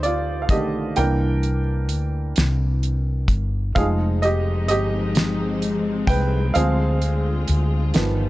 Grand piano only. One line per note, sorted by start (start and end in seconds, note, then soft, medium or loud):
0.00 0.93 G3 medium
0.00 0.50 A3 medium
0.00 0.93 C4 medium
0.00 0.99 D#4 medium
0.00 0.52 G4 medium
0.00 0.99 C5 medium
0.00 0.03 D5 medium
0.00 0.12 D5 medium
0.00 0.50 D#5 medium
0.05 0.14 F4 medium
0.42 0.49 F5 medium
0.50 0.93 D3 soft
0.50 0.93 D#3 soft
0.50 0.93 A3 soft
0.50 0.94 G4 medium
0.50 0.93 D#5 medium
0.97 1.59 E3 medium
0.97 1.59 A#3 medium
0.97 1.59 D4 medium
0.97 2.33 A#4 medium
0.97 2.32 G5 medium
3.75 5.11 F3 medium
3.75 5.12 G#3 medium
3.75 5.12 D#4 medium
3.75 3.88 G#4 medium
3.75 3.86 F5 medium
4.22 4.35 G4 medium
4.22 4.33 D#5 medium
4.68 6.05 G4 medium
4.68 6.12 D#5 loud
6.07 6.52 B4 medium
6.07 6.56 G5 loud
6.54 7.90 F3 medium
6.54 7.90 G#3 medium
6.54 7.91 C4 medium
6.54 8.29 G#4 medium
6.54 8.29 F5 medium
7.94 8.29 D#3 medium
7.94 8.29 F3 medium
7.94 8.29 B3 medium